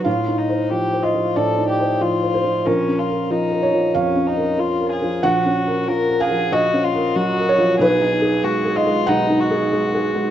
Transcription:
X:1
M:4/4
L:1/8
Q:1/4=93
K:G#dor
V:1 name="Violin"
=F _E =G F =A G F2 | C E D2 C D E G | F2 A G F E F2 | G2 F E D F3 |]
V:2 name="Felt piano"
=f3 _e =d3 =c | A3 c e4 | f3 e d3 c | B3 d f4 |]
V:3 name="Felt piano"
(3=A,, _E =c (3=F, c F, (3A,, E c (3F, c F, | (3A,,, C A (3E, A E, (3E,, C A (3E, A E, | (3A,,, C A (3E, A E, (3A,,, C A (3F, A E, | (3B,,, D G (3G, G G, (3B,,, D G (3G, G G, |]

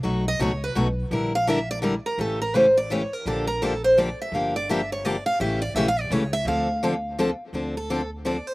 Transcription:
X:1
M:3/4
L:1/16
Q:"Swing" 1/4=168
K:Dm
V:1 name="Steel-string acoustic guitar"
z2 ^d2 ^c2 =B2 z4 | z2 f2 e2 d2 z2 B2 | A2 B2 c2 d2 ^c2 B2 | A2 B2 A2 c2 d2 e2 |
f2 d2 e2 ^c2 d2 f2 | e2 d2 (3e2 f2 d2 ^c2 e2 | f8- f3 z | z2 A4 z2 d2 c2 |]
V:2 name="Steel-string acoustic guitar"
[=B,,^F,A,^D^F]2 z2 [B,,F,A,DF] z3 [B,,F,A,DF] z3 | [D,G,DEB]2 z2 [D,G,DEB] z3 [D,G,DEB] z3 | [^C,E,A,^CG]2 z2 [C,E,A,CG] z3 [C,E,A,CG] z3 | [D,F,B,DG]2 z2 [D,F,B,DG] z3 [D,F,B,DG] z3 |
[D,F,B,DG]2 z2 [D,F,B,DG] z3 [D,F,B,DG] z3 | [^C,E,A,^CG]2 z2 [C,E,A,CG] z3 [C,E,A,CG] z3 | [D,F,CDA]2 z2 [D,F,CDA] z3 [D,F,CDA] z3 | [D,F,CDA]2 z2 [D,F,CDA] z3 [D,F,CDA] z3 |]
V:3 name="Upright bass" clef=bass
=B,,,4 ^C,,4 B,,,4 | B,,,12 | A,,,12 | B,,,12 |
G,,,12 | A,,,4 B,,,4 ^C,,4 | D,,12 | D,,12 |]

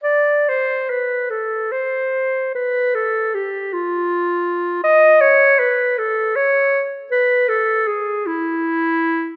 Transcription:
X:1
M:6/8
L:1/8
Q:3/8=52
K:Am
V:1 name="Clarinet"
d c B A c2 | B A G F3 | ^d ^c B A c z | B A ^G E3 |]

